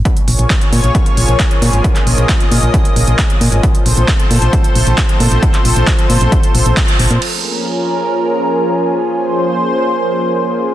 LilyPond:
<<
  \new Staff \with { instrumentName = "Analog synth pad" } { \time 4/4 \key bes \minor \tempo 4 = 134 << { des''1 | ees''1 | c''1~ | c''1 |
bes'1 | c''1 | } \\ { <f bes des' aes'>1~ | <f bes des' aes'>1 | <f a c' a'>1~ | <f a c' a'>1 |
<f bes des' aes'>1~ | <f bes des' aes'>1 | } >> }
  \new Staff \with { instrumentName = "FM bass" } { \clef bass \time 4/4 \key bes \minor r8 bes,,16 bes,,16 r8 bes,16 bes,,16 r8 bes,,16 bes,,16 r8 bes,16 aes,,16 | r8 bes,,16 bes,,16 r8 bes,16 bes,,16 r8 bes,,16 bes,,16 r8 bes,16 aes,,16 | r8 bes,,16 bes,,16 r8 bes,16 bes,,16 r8 bes,,16 bes,,16 r8 bes,16 bes,,16 | r8 bes,,16 bes,,16 r8 bes,16 bes,,16 r8 bes,,16 bes,,16 r8 bes,,16 bes,16 |
r1 | r1 | }
  \new DrumStaff \with { instrumentName = "Drums" } \drummode { \time 4/4 <hh bd>16 hh16 hho16 hh16 <hc hh bd>16 hh16 hho16 hh16 <hh bd>16 hh16 hho16 hh16 <hc hh bd>16 hh16 hho16 hh16 | <hh bd>16 <hc hh>16 hho16 hh16 <hc hh bd>16 hh16 hho16 hh16 <hh bd>16 hh16 hho16 hh16 <hc hh bd>16 hh16 hho16 hh16 | <hh bd>16 hh16 hho16 hh16 <hc hh bd>16 hh16 hho16 hh16 <hh bd>16 hh16 hho16 hh16 <hc hh bd>16 hh16 hho16 hh16 | <hh bd>16 <hc hh>16 hho16 hh16 <hc hh bd>16 hh16 hho16 hh16 <hh bd>16 hh16 hho16 hh16 <hc hh bd>16 hh16 hho16 hh16 |
cymc4 r4 r4 r4 | r4 r4 r4 r4 | }
>>